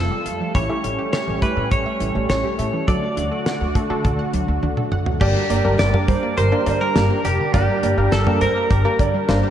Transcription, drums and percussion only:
0, 0, Header, 1, 2, 480
1, 0, Start_track
1, 0, Key_signature, -2, "minor"
1, 0, Tempo, 582524
1, 452, Time_signature, 4, 2, 24, 8
1, 7830, End_track
2, 0, Start_track
2, 0, Title_t, "Drums"
2, 213, Note_on_c, 9, 42, 76
2, 295, Note_off_c, 9, 42, 0
2, 453, Note_on_c, 9, 36, 108
2, 453, Note_on_c, 9, 42, 88
2, 535, Note_off_c, 9, 42, 0
2, 536, Note_off_c, 9, 36, 0
2, 693, Note_on_c, 9, 42, 80
2, 776, Note_off_c, 9, 42, 0
2, 933, Note_on_c, 9, 38, 111
2, 933, Note_on_c, 9, 42, 62
2, 1015, Note_off_c, 9, 38, 0
2, 1015, Note_off_c, 9, 42, 0
2, 1172, Note_on_c, 9, 36, 89
2, 1172, Note_on_c, 9, 42, 75
2, 1254, Note_off_c, 9, 42, 0
2, 1255, Note_off_c, 9, 36, 0
2, 1413, Note_on_c, 9, 42, 68
2, 1415, Note_on_c, 9, 36, 90
2, 1496, Note_off_c, 9, 42, 0
2, 1497, Note_off_c, 9, 36, 0
2, 1651, Note_on_c, 9, 42, 75
2, 1734, Note_off_c, 9, 42, 0
2, 1892, Note_on_c, 9, 38, 114
2, 1892, Note_on_c, 9, 42, 73
2, 1975, Note_off_c, 9, 38, 0
2, 1975, Note_off_c, 9, 42, 0
2, 2133, Note_on_c, 9, 42, 78
2, 2215, Note_off_c, 9, 42, 0
2, 2373, Note_on_c, 9, 36, 105
2, 2373, Note_on_c, 9, 42, 88
2, 2456, Note_off_c, 9, 36, 0
2, 2456, Note_off_c, 9, 42, 0
2, 2613, Note_on_c, 9, 42, 81
2, 2696, Note_off_c, 9, 42, 0
2, 2853, Note_on_c, 9, 38, 113
2, 2853, Note_on_c, 9, 42, 63
2, 2935, Note_off_c, 9, 42, 0
2, 2936, Note_off_c, 9, 38, 0
2, 3092, Note_on_c, 9, 36, 88
2, 3092, Note_on_c, 9, 42, 80
2, 3174, Note_off_c, 9, 42, 0
2, 3175, Note_off_c, 9, 36, 0
2, 3332, Note_on_c, 9, 47, 72
2, 3333, Note_on_c, 9, 42, 72
2, 3335, Note_on_c, 9, 36, 90
2, 3415, Note_off_c, 9, 42, 0
2, 3415, Note_off_c, 9, 47, 0
2, 3417, Note_off_c, 9, 36, 0
2, 3571, Note_on_c, 9, 42, 74
2, 3654, Note_off_c, 9, 42, 0
2, 3812, Note_on_c, 9, 48, 57
2, 3894, Note_off_c, 9, 48, 0
2, 3932, Note_on_c, 9, 47, 62
2, 4014, Note_off_c, 9, 47, 0
2, 4052, Note_on_c, 9, 45, 86
2, 4134, Note_off_c, 9, 45, 0
2, 4172, Note_on_c, 9, 43, 94
2, 4255, Note_off_c, 9, 43, 0
2, 4292, Note_on_c, 9, 49, 105
2, 4293, Note_on_c, 9, 36, 109
2, 4375, Note_off_c, 9, 36, 0
2, 4375, Note_off_c, 9, 49, 0
2, 4533, Note_on_c, 9, 42, 87
2, 4615, Note_off_c, 9, 42, 0
2, 4773, Note_on_c, 9, 38, 120
2, 4773, Note_on_c, 9, 42, 68
2, 4855, Note_off_c, 9, 38, 0
2, 4855, Note_off_c, 9, 42, 0
2, 4893, Note_on_c, 9, 45, 94
2, 4975, Note_off_c, 9, 45, 0
2, 5012, Note_on_c, 9, 36, 96
2, 5012, Note_on_c, 9, 42, 81
2, 5094, Note_off_c, 9, 42, 0
2, 5095, Note_off_c, 9, 36, 0
2, 5253, Note_on_c, 9, 42, 72
2, 5335, Note_off_c, 9, 42, 0
2, 5491, Note_on_c, 9, 42, 77
2, 5491, Note_on_c, 9, 56, 71
2, 5573, Note_off_c, 9, 42, 0
2, 5574, Note_off_c, 9, 56, 0
2, 5732, Note_on_c, 9, 38, 120
2, 5732, Note_on_c, 9, 42, 76
2, 5814, Note_off_c, 9, 42, 0
2, 5815, Note_off_c, 9, 38, 0
2, 5972, Note_on_c, 9, 42, 80
2, 6055, Note_off_c, 9, 42, 0
2, 6212, Note_on_c, 9, 42, 94
2, 6213, Note_on_c, 9, 36, 109
2, 6295, Note_off_c, 9, 36, 0
2, 6295, Note_off_c, 9, 42, 0
2, 6453, Note_on_c, 9, 42, 85
2, 6536, Note_off_c, 9, 42, 0
2, 6693, Note_on_c, 9, 38, 120
2, 6693, Note_on_c, 9, 42, 64
2, 6775, Note_off_c, 9, 38, 0
2, 6775, Note_off_c, 9, 42, 0
2, 6813, Note_on_c, 9, 45, 95
2, 6895, Note_off_c, 9, 45, 0
2, 6932, Note_on_c, 9, 42, 80
2, 7014, Note_off_c, 9, 42, 0
2, 7174, Note_on_c, 9, 42, 73
2, 7175, Note_on_c, 9, 36, 93
2, 7256, Note_off_c, 9, 42, 0
2, 7257, Note_off_c, 9, 36, 0
2, 7411, Note_on_c, 9, 36, 93
2, 7412, Note_on_c, 9, 42, 78
2, 7494, Note_off_c, 9, 36, 0
2, 7494, Note_off_c, 9, 42, 0
2, 7652, Note_on_c, 9, 38, 119
2, 7652, Note_on_c, 9, 42, 75
2, 7735, Note_off_c, 9, 38, 0
2, 7735, Note_off_c, 9, 42, 0
2, 7830, End_track
0, 0, End_of_file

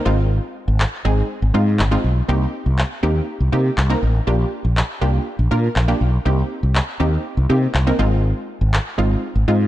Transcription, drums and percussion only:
0, 0, Header, 1, 2, 480
1, 0, Start_track
1, 0, Key_signature, -3, "minor"
1, 0, Tempo, 495868
1, 297, Time_signature, 4, 2, 24, 8
1, 9365, End_track
2, 0, Start_track
2, 0, Title_t, "Drums"
2, 777, Note_on_c, 9, 39, 114
2, 873, Note_off_c, 9, 39, 0
2, 1736, Note_on_c, 9, 39, 106
2, 1833, Note_off_c, 9, 39, 0
2, 2696, Note_on_c, 9, 39, 115
2, 2793, Note_off_c, 9, 39, 0
2, 3657, Note_on_c, 9, 39, 112
2, 3754, Note_off_c, 9, 39, 0
2, 4619, Note_on_c, 9, 39, 108
2, 4716, Note_off_c, 9, 39, 0
2, 5577, Note_on_c, 9, 39, 114
2, 5673, Note_off_c, 9, 39, 0
2, 6538, Note_on_c, 9, 39, 110
2, 6635, Note_off_c, 9, 39, 0
2, 7498, Note_on_c, 9, 39, 112
2, 7594, Note_off_c, 9, 39, 0
2, 8458, Note_on_c, 9, 39, 115
2, 8555, Note_off_c, 9, 39, 0
2, 9365, End_track
0, 0, End_of_file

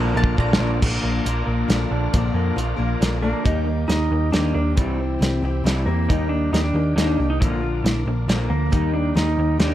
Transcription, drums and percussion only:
0, 0, Header, 1, 2, 480
1, 0, Start_track
1, 0, Tempo, 439239
1, 884, Time_signature, 3, 2, 24, 8
1, 10646, End_track
2, 0, Start_track
2, 0, Title_t, "Drums"
2, 259, Note_on_c, 9, 36, 90
2, 368, Note_off_c, 9, 36, 0
2, 418, Note_on_c, 9, 36, 85
2, 528, Note_off_c, 9, 36, 0
2, 582, Note_on_c, 9, 38, 111
2, 692, Note_off_c, 9, 38, 0
2, 901, Note_on_c, 9, 36, 120
2, 902, Note_on_c, 9, 49, 122
2, 1010, Note_off_c, 9, 36, 0
2, 1011, Note_off_c, 9, 49, 0
2, 1379, Note_on_c, 9, 42, 68
2, 1488, Note_off_c, 9, 42, 0
2, 1855, Note_on_c, 9, 42, 61
2, 1860, Note_on_c, 9, 38, 81
2, 1964, Note_off_c, 9, 42, 0
2, 1969, Note_off_c, 9, 38, 0
2, 2334, Note_on_c, 9, 42, 67
2, 2338, Note_on_c, 9, 36, 118
2, 2444, Note_off_c, 9, 42, 0
2, 2447, Note_off_c, 9, 36, 0
2, 2821, Note_on_c, 9, 42, 60
2, 2930, Note_off_c, 9, 42, 0
2, 3301, Note_on_c, 9, 42, 67
2, 3306, Note_on_c, 9, 38, 83
2, 3410, Note_off_c, 9, 42, 0
2, 3416, Note_off_c, 9, 38, 0
2, 3775, Note_on_c, 9, 42, 73
2, 3776, Note_on_c, 9, 36, 105
2, 3884, Note_off_c, 9, 42, 0
2, 3886, Note_off_c, 9, 36, 0
2, 4256, Note_on_c, 9, 42, 62
2, 4261, Note_on_c, 9, 38, 72
2, 4365, Note_off_c, 9, 42, 0
2, 4371, Note_off_c, 9, 38, 0
2, 4737, Note_on_c, 9, 42, 64
2, 4742, Note_on_c, 9, 38, 85
2, 4846, Note_off_c, 9, 42, 0
2, 4851, Note_off_c, 9, 38, 0
2, 5215, Note_on_c, 9, 42, 65
2, 5219, Note_on_c, 9, 36, 107
2, 5324, Note_off_c, 9, 42, 0
2, 5328, Note_off_c, 9, 36, 0
2, 5706, Note_on_c, 9, 42, 60
2, 5712, Note_on_c, 9, 38, 78
2, 5816, Note_off_c, 9, 42, 0
2, 5821, Note_off_c, 9, 38, 0
2, 6190, Note_on_c, 9, 42, 62
2, 6196, Note_on_c, 9, 38, 85
2, 6300, Note_off_c, 9, 42, 0
2, 6305, Note_off_c, 9, 38, 0
2, 6666, Note_on_c, 9, 36, 109
2, 6666, Note_on_c, 9, 42, 73
2, 6775, Note_off_c, 9, 36, 0
2, 6775, Note_off_c, 9, 42, 0
2, 7148, Note_on_c, 9, 42, 66
2, 7154, Note_on_c, 9, 38, 76
2, 7258, Note_off_c, 9, 42, 0
2, 7263, Note_off_c, 9, 38, 0
2, 7625, Note_on_c, 9, 42, 68
2, 7631, Note_on_c, 9, 38, 78
2, 7735, Note_off_c, 9, 42, 0
2, 7740, Note_off_c, 9, 38, 0
2, 8108, Note_on_c, 9, 36, 119
2, 8111, Note_on_c, 9, 42, 69
2, 8217, Note_off_c, 9, 36, 0
2, 8220, Note_off_c, 9, 42, 0
2, 8587, Note_on_c, 9, 42, 68
2, 8592, Note_on_c, 9, 38, 73
2, 8696, Note_off_c, 9, 42, 0
2, 8701, Note_off_c, 9, 38, 0
2, 9062, Note_on_c, 9, 42, 66
2, 9068, Note_on_c, 9, 38, 79
2, 9172, Note_off_c, 9, 42, 0
2, 9177, Note_off_c, 9, 38, 0
2, 9535, Note_on_c, 9, 42, 64
2, 9539, Note_on_c, 9, 36, 106
2, 9644, Note_off_c, 9, 42, 0
2, 9648, Note_off_c, 9, 36, 0
2, 10017, Note_on_c, 9, 42, 60
2, 10023, Note_on_c, 9, 38, 76
2, 10127, Note_off_c, 9, 42, 0
2, 10132, Note_off_c, 9, 38, 0
2, 10487, Note_on_c, 9, 42, 63
2, 10493, Note_on_c, 9, 38, 88
2, 10597, Note_off_c, 9, 42, 0
2, 10602, Note_off_c, 9, 38, 0
2, 10646, End_track
0, 0, End_of_file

